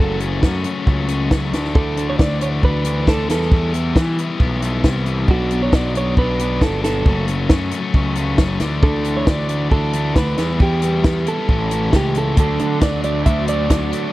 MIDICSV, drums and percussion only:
0, 0, Header, 1, 2, 480
1, 0, Start_track
1, 0, Tempo, 442478
1, 1901, Time_signature, 4, 2, 24, 8
1, 15323, End_track
2, 0, Start_track
2, 0, Title_t, "Drums"
2, 222, Note_on_c, 9, 42, 74
2, 330, Note_off_c, 9, 42, 0
2, 464, Note_on_c, 9, 36, 97
2, 466, Note_on_c, 9, 38, 87
2, 573, Note_off_c, 9, 36, 0
2, 574, Note_off_c, 9, 38, 0
2, 698, Note_on_c, 9, 42, 72
2, 806, Note_off_c, 9, 42, 0
2, 943, Note_on_c, 9, 36, 94
2, 1051, Note_off_c, 9, 36, 0
2, 1178, Note_on_c, 9, 42, 73
2, 1286, Note_off_c, 9, 42, 0
2, 1421, Note_on_c, 9, 36, 90
2, 1422, Note_on_c, 9, 38, 90
2, 1530, Note_off_c, 9, 36, 0
2, 1531, Note_off_c, 9, 38, 0
2, 1666, Note_on_c, 9, 42, 65
2, 1668, Note_on_c, 9, 38, 64
2, 1774, Note_off_c, 9, 42, 0
2, 1776, Note_off_c, 9, 38, 0
2, 1787, Note_on_c, 9, 38, 26
2, 1896, Note_off_c, 9, 38, 0
2, 1901, Note_on_c, 9, 36, 108
2, 2010, Note_off_c, 9, 36, 0
2, 2142, Note_on_c, 9, 42, 74
2, 2250, Note_off_c, 9, 42, 0
2, 2379, Note_on_c, 9, 36, 107
2, 2388, Note_on_c, 9, 38, 101
2, 2488, Note_off_c, 9, 36, 0
2, 2496, Note_off_c, 9, 38, 0
2, 2617, Note_on_c, 9, 42, 80
2, 2725, Note_off_c, 9, 42, 0
2, 2855, Note_on_c, 9, 36, 94
2, 2964, Note_off_c, 9, 36, 0
2, 3088, Note_on_c, 9, 42, 81
2, 3197, Note_off_c, 9, 42, 0
2, 3334, Note_on_c, 9, 36, 88
2, 3338, Note_on_c, 9, 38, 76
2, 3442, Note_off_c, 9, 36, 0
2, 3447, Note_off_c, 9, 38, 0
2, 3576, Note_on_c, 9, 42, 72
2, 3578, Note_on_c, 9, 38, 65
2, 3685, Note_off_c, 9, 42, 0
2, 3687, Note_off_c, 9, 38, 0
2, 3704, Note_on_c, 9, 38, 29
2, 3812, Note_off_c, 9, 38, 0
2, 3814, Note_on_c, 9, 36, 109
2, 3922, Note_off_c, 9, 36, 0
2, 4057, Note_on_c, 9, 42, 80
2, 4166, Note_off_c, 9, 42, 0
2, 4292, Note_on_c, 9, 36, 92
2, 4301, Note_on_c, 9, 38, 95
2, 4401, Note_off_c, 9, 36, 0
2, 4409, Note_off_c, 9, 38, 0
2, 4541, Note_on_c, 9, 42, 70
2, 4649, Note_off_c, 9, 42, 0
2, 4773, Note_on_c, 9, 36, 93
2, 4881, Note_off_c, 9, 36, 0
2, 5016, Note_on_c, 9, 42, 71
2, 5125, Note_off_c, 9, 42, 0
2, 5250, Note_on_c, 9, 36, 87
2, 5253, Note_on_c, 9, 38, 86
2, 5358, Note_off_c, 9, 36, 0
2, 5361, Note_off_c, 9, 38, 0
2, 5491, Note_on_c, 9, 42, 62
2, 5599, Note_off_c, 9, 42, 0
2, 5729, Note_on_c, 9, 36, 101
2, 5838, Note_off_c, 9, 36, 0
2, 5975, Note_on_c, 9, 42, 75
2, 6083, Note_off_c, 9, 42, 0
2, 6213, Note_on_c, 9, 36, 92
2, 6215, Note_on_c, 9, 38, 103
2, 6321, Note_off_c, 9, 36, 0
2, 6324, Note_off_c, 9, 38, 0
2, 6458, Note_on_c, 9, 42, 79
2, 6567, Note_off_c, 9, 42, 0
2, 6693, Note_on_c, 9, 36, 92
2, 6802, Note_off_c, 9, 36, 0
2, 6938, Note_on_c, 9, 42, 84
2, 7047, Note_off_c, 9, 42, 0
2, 7175, Note_on_c, 9, 36, 85
2, 7181, Note_on_c, 9, 38, 86
2, 7284, Note_off_c, 9, 36, 0
2, 7290, Note_off_c, 9, 38, 0
2, 7423, Note_on_c, 9, 42, 77
2, 7426, Note_on_c, 9, 38, 68
2, 7532, Note_off_c, 9, 42, 0
2, 7534, Note_off_c, 9, 38, 0
2, 7656, Note_on_c, 9, 36, 110
2, 7764, Note_off_c, 9, 36, 0
2, 7896, Note_on_c, 9, 42, 78
2, 8005, Note_off_c, 9, 42, 0
2, 8130, Note_on_c, 9, 38, 101
2, 8134, Note_on_c, 9, 36, 100
2, 8239, Note_off_c, 9, 38, 0
2, 8243, Note_off_c, 9, 36, 0
2, 8369, Note_on_c, 9, 42, 80
2, 8477, Note_off_c, 9, 42, 0
2, 8614, Note_on_c, 9, 36, 90
2, 8722, Note_off_c, 9, 36, 0
2, 8847, Note_on_c, 9, 42, 81
2, 8956, Note_off_c, 9, 42, 0
2, 9091, Note_on_c, 9, 38, 97
2, 9094, Note_on_c, 9, 36, 88
2, 9199, Note_off_c, 9, 38, 0
2, 9202, Note_off_c, 9, 36, 0
2, 9327, Note_on_c, 9, 42, 70
2, 9330, Note_on_c, 9, 38, 65
2, 9436, Note_off_c, 9, 42, 0
2, 9438, Note_off_c, 9, 38, 0
2, 9575, Note_on_c, 9, 36, 114
2, 9683, Note_off_c, 9, 36, 0
2, 9813, Note_on_c, 9, 42, 74
2, 9922, Note_off_c, 9, 42, 0
2, 10056, Note_on_c, 9, 36, 101
2, 10056, Note_on_c, 9, 38, 98
2, 10164, Note_off_c, 9, 36, 0
2, 10164, Note_off_c, 9, 38, 0
2, 10295, Note_on_c, 9, 42, 78
2, 10403, Note_off_c, 9, 42, 0
2, 10537, Note_on_c, 9, 36, 90
2, 10646, Note_off_c, 9, 36, 0
2, 10776, Note_on_c, 9, 42, 82
2, 10884, Note_off_c, 9, 42, 0
2, 11018, Note_on_c, 9, 36, 97
2, 11019, Note_on_c, 9, 38, 89
2, 11126, Note_off_c, 9, 36, 0
2, 11127, Note_off_c, 9, 38, 0
2, 11258, Note_on_c, 9, 42, 76
2, 11260, Note_on_c, 9, 38, 71
2, 11366, Note_off_c, 9, 42, 0
2, 11368, Note_off_c, 9, 38, 0
2, 11499, Note_on_c, 9, 36, 106
2, 11608, Note_off_c, 9, 36, 0
2, 11737, Note_on_c, 9, 42, 85
2, 11845, Note_off_c, 9, 42, 0
2, 11979, Note_on_c, 9, 38, 103
2, 11980, Note_on_c, 9, 36, 106
2, 12088, Note_off_c, 9, 36, 0
2, 12088, Note_off_c, 9, 38, 0
2, 12222, Note_on_c, 9, 42, 82
2, 12330, Note_off_c, 9, 42, 0
2, 12462, Note_on_c, 9, 36, 90
2, 12571, Note_off_c, 9, 36, 0
2, 12704, Note_on_c, 9, 42, 82
2, 12813, Note_off_c, 9, 42, 0
2, 12940, Note_on_c, 9, 38, 87
2, 12942, Note_on_c, 9, 36, 84
2, 13048, Note_off_c, 9, 38, 0
2, 13051, Note_off_c, 9, 36, 0
2, 13178, Note_on_c, 9, 42, 73
2, 13286, Note_off_c, 9, 42, 0
2, 13420, Note_on_c, 9, 42, 87
2, 13422, Note_on_c, 9, 36, 106
2, 13528, Note_off_c, 9, 42, 0
2, 13531, Note_off_c, 9, 36, 0
2, 13663, Note_on_c, 9, 42, 60
2, 13772, Note_off_c, 9, 42, 0
2, 13901, Note_on_c, 9, 42, 82
2, 13903, Note_on_c, 9, 36, 103
2, 13903, Note_on_c, 9, 38, 96
2, 14009, Note_off_c, 9, 42, 0
2, 14011, Note_off_c, 9, 36, 0
2, 14011, Note_off_c, 9, 38, 0
2, 14143, Note_on_c, 9, 42, 63
2, 14251, Note_off_c, 9, 42, 0
2, 14384, Note_on_c, 9, 36, 97
2, 14384, Note_on_c, 9, 42, 78
2, 14492, Note_off_c, 9, 42, 0
2, 14493, Note_off_c, 9, 36, 0
2, 14623, Note_on_c, 9, 42, 69
2, 14731, Note_off_c, 9, 42, 0
2, 14864, Note_on_c, 9, 36, 80
2, 14865, Note_on_c, 9, 42, 72
2, 14868, Note_on_c, 9, 38, 91
2, 14972, Note_off_c, 9, 36, 0
2, 14974, Note_off_c, 9, 42, 0
2, 14976, Note_off_c, 9, 38, 0
2, 15109, Note_on_c, 9, 42, 61
2, 15218, Note_off_c, 9, 42, 0
2, 15323, End_track
0, 0, End_of_file